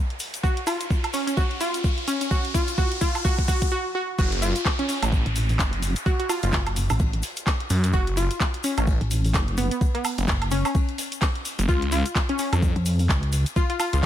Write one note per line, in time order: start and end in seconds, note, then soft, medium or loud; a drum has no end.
0.00 riser medium
0.10 closed hi-hat soft
0.19 open hi-hat loud
0.19 shaker medium
0.34 closed hi-hat medium
0.34 shaker medium
0.43 0.63 F#4 medium
0.43 kick loud
0.43 shaker soft
0.57 closed hi-hat soft
0.67 0.86 F4 medium
0.67 open hi-hat loud
0.67 high woodblock medium
0.67 shaker loud
0.81 closed hi-hat medium
0.81 shaker medium
0.90 kick loud
0.90 shaker soft
1.04 closed hi-hat medium
1.04 high woodblock medium
1.14 1.22 C#4 medium
1.14 open hi-hat loud
1.14 shaker loud
1.27 1.34 C#4 medium
1.27 closed hi-hat medium
1.27 shaker medium
1.37 1.57 F#4 medium
1.37 kick loud
1.37 shaker soft
1.51 closed hi-hat soft
1.61 1.80 F4 medium
1.61 open hi-hat loud
1.61 shaker medium
1.74 closed hi-hat medium
1.74 shaker medium
1.84 kick loud
1.84 shaker soft
1.98 closed hi-hat soft
2.08 2.16 C#4 medium
2.08 open hi-hat loud
2.08 shaker loud
2.21 2.27 C#4 medium
2.21 closed hi-hat medium
2.21 shaker medium
2.31 2.51 F#4 medium
2.31 kick loud
2.31 shaker soft
2.45 closed hi-hat soft
2.54 2.74 F4 medium
2.54 kick loud
2.54 open hi-hat loud
2.54 shaker loud
2.67 closed hi-hat medium
2.67 shaker soft
2.78 2.98 F#4 medium
2.78 kick loud
2.78 shaker soft
2.92 closed hi-hat medium
3.01 3.21 F4 medium
3.01 kick loud
3.01 open hi-hat loud
3.01 shaker medium
3.15 open hi-hat medium
3.15 high woodblock medium
3.15 shaker soft
3.25 3.44 F#4 loud
3.25 kick loud
3.25 shaker soft
3.38 kick medium
3.38 closed hi-hat soft
3.48 3.68 F#4 medium
3.48 kick loud
3.48 open hi-hat loud
3.48 shaker medium
3.61 kick loud
3.61 closed hi-hat medium
3.61 shaker soft
3.72 3.91 F#4 loud
3.95 4.15 F#4 loud
4.18 4.53 F#1 medium
4.18 4.38 F#4 medium
4.18 kick loud
4.18 ride medium
4.18 crash loud
4.18 downlifter medium
4.18 shaker soft
4.31 closed hi-hat medium
4.31 ride soft
4.42 4.62 F4 medium
4.42 open hi-hat loud
4.42 ride medium
4.42 shaker loud
4.56 closed hi-hat medium
4.56 ride soft
4.56 shaker medium
4.65 kick loud
4.65 snare loud
4.65 clap loud
4.65 ride medium
4.65 shaker soft
4.79 4.85 C#4 medium
4.79 closed hi-hat medium
4.89 4.97 C#4 medium
4.89 open hi-hat loud
4.89 ride medium
4.89 shaker medium
5.02 5.24 A1 loud
5.02 closed hi-hat medium
5.02 ride soft
5.02 high woodblock medium
5.02 shaker medium
5.12 kick loud
5.12 ride medium
5.12 shaker soft
5.26 5.58 A1 loud
5.26 closed hi-hat soft
5.36 open hi-hat loud
5.36 ride medium
5.36 shaker loud
5.49 open hi-hat medium
5.49 shaker soft
5.59 5.94 F#1 loud
5.59 kick loud
5.59 snare loud
5.59 clap loud
5.59 ride medium
5.59 shaker soft
5.73 closed hi-hat soft
5.73 ride soft
5.82 open hi-hat loud
5.82 ride medium
5.82 shaker medium
5.96 closed hi-hat medium
5.96 shaker medium
6.06 6.15 F#4 medium
6.06 kick loud
6.06 ride medium
6.06 shaker soft
6.19 6.26 F#4 medium
6.19 closed hi-hat medium
6.29 6.38 F4 medium
6.29 open hi-hat loud
6.29 open hi-hat medium
6.29 high woodblock medium
6.29 shaker loud
6.43 6.51 F#1 medium
6.43 6.49 F4 medium
6.43 closed hi-hat medium
6.43 shaker soft
6.52 6.88 F#1 loud
6.52 kick loud
6.52 snare loud
6.52 clap loud
6.52 ride medium
6.52 shaker soft
6.66 closed hi-hat medium
6.66 high woodblock medium
6.76 open hi-hat loud
6.76 ride medium
6.76 shaker medium
6.90 7.22 A1 medium
6.90 open hi-hat medium
6.90 high woodblock medium
6.90 shaker medium
6.99 kick loud
6.99 ride medium
6.99 shaker soft
7.13 closed hi-hat soft
7.22 snare medium
7.22 open hi-hat loud
7.22 ride medium
7.22 shaker medium
7.37 closed hi-hat medium
7.37 shaker medium
7.47 kick loud
7.47 snare loud
7.47 clap loud
7.47 ride medium
7.47 shaker soft
7.60 closed hi-hat soft
7.70 7.92 F#2 medium
7.70 snare soft
7.70 open hi-hat loud
7.70 ride medium
7.70 shaker medium
7.83 snare medium
7.83 closed hi-hat medium
7.83 shaker medium
7.93 8.28 F#1 loud
7.93 8.13 F#4 medium
7.93 kick loud
7.93 ride medium
7.93 shaker soft
8.07 closed hi-hat soft
8.07 ride soft
8.17 8.37 F4 medium
8.17 open hi-hat loud
8.17 ride medium
8.17 shaker loud
8.30 closed hi-hat medium
8.30 ride soft
8.30 shaker medium
8.40 kick loud
8.40 snare loud
8.40 clap loud
8.40 ride medium
8.40 shaker soft
8.54 closed hi-hat medium
8.64 8.73 C#4 medium
8.64 open hi-hat loud
8.64 ride medium
8.64 shaker loud
8.77 8.99 A1 loud
8.77 8.84 C#4 medium
8.77 closed hi-hat medium
8.77 ride soft
8.77 high woodblock medium
8.77 shaker medium
8.87 kick loud
8.87 ride medium
8.87 shaker soft
9.01 9.33 A1 loud
9.01 closed hi-hat soft
9.11 open hi-hat loud
9.11 ride medium
9.11 shaker loud
9.25 open hi-hat medium
9.25 shaker soft
9.34 9.69 F#1 loud
9.34 kick loud
9.34 snare loud
9.34 clap loud
9.34 ride medium
9.34 shaker soft
9.48 closed hi-hat soft
9.48 ride soft
9.57 9.66 B3 loud
9.57 open hi-hat loud
9.57 ride medium
9.57 shaker medium
9.71 9.78 B3 medium
9.71 closed hi-hat medium
9.71 shaker medium
9.81 kick loud
9.81 ride medium
9.81 shaker soft
9.95 10.28 B3 medium
9.95 closed hi-hat soft
10.04 open hi-hat loud
10.04 open hi-hat medium
10.04 high woodblock medium
10.04 shaker loud
10.18 10.26 F#1 medium
10.18 closed hi-hat medium
10.18 shaker soft
10.28 10.63 F#1 loud
10.28 kick loud
10.28 snare loud
10.28 clap loud
10.28 ride loud
10.28 shaker soft
10.42 closed hi-hat soft
10.42 high woodblock medium
10.51 10.60 C#4 medium
10.51 open hi-hat loud
10.51 ride medium
10.51 shaker medium
10.65 10.71 C#4 medium
10.65 open hi-hat medium
10.65 high woodblock medium
10.65 shaker medium
10.75 kick loud
10.75 ride medium
10.75 shaker soft
10.89 closed hi-hat soft
10.98 snare soft
10.98 open hi-hat loud
10.98 ride medium
10.98 shaker loud
11.12 closed hi-hat medium
11.12 shaker medium
11.21 kick loud
11.21 snare loud
11.21 clap loud
11.21 ride loud
11.21 shaker soft
11.35 closed hi-hat soft
11.45 snare soft
11.45 open hi-hat loud
11.45 ride medium
11.45 shaker medium
11.59 11.67 F#1 loud
11.59 snare medium
11.59 closed hi-hat medium
11.59 shaker medium
11.68 12.03 C#2 loud
11.68 11.88 F4 medium
11.68 kick loud
11.68 ride loud
11.68 shaker soft
11.82 closed hi-hat soft
11.82 ride soft
11.92 12.12 F4 medium
11.92 open hi-hat loud
11.92 ride medium
11.92 shaker medium
12.06 closed hi-hat medium
12.06 ride soft
12.06 shaker soft
12.15 kick loud
12.15 snare loud
12.15 clap loud
12.15 ride medium
12.15 shaker soft
12.29 12.35 C#4 medium
12.29 closed hi-hat medium
12.38 12.48 C#4 medium
12.38 open hi-hat loud
12.38 ride medium
12.38 shaker loud
12.52 12.74 F2 loud
12.52 closed hi-hat medium
12.52 ride soft
12.52 high woodblock medium
12.52 shaker medium
12.62 kick loud
12.62 ride medium
12.62 shaker soft
12.76 13.08 F2 loud
12.76 closed hi-hat soft
12.86 open hi-hat loud
12.86 ride medium
12.86 shaker loud
12.99 open hi-hat medium
12.99 shaker soft
13.09 13.44 C#2 loud
13.09 kick loud
13.09 snare loud
13.09 clap loud
13.09 ride medium
13.09 shaker soft
13.23 closed hi-hat soft
13.23 ride soft
13.32 open hi-hat loud
13.32 ride medium
13.32 shaker medium
13.46 closed hi-hat medium
13.46 shaker medium
13.56 13.65 F4 medium
13.56 kick loud
13.56 ride loud
13.56 shaker soft
13.70 13.76 F4 medium
13.70 closed hi-hat medium
13.79 13.88 F4 medium
13.79 open hi-hat loud
13.79 high woodblock medium
13.79 shaker medium
13.93 14.01 C#2 medium
13.93 13.99 F4 medium
13.93 closed hi-hat medium
13.93 shaker soft
14.02 snare loud
14.02 ride medium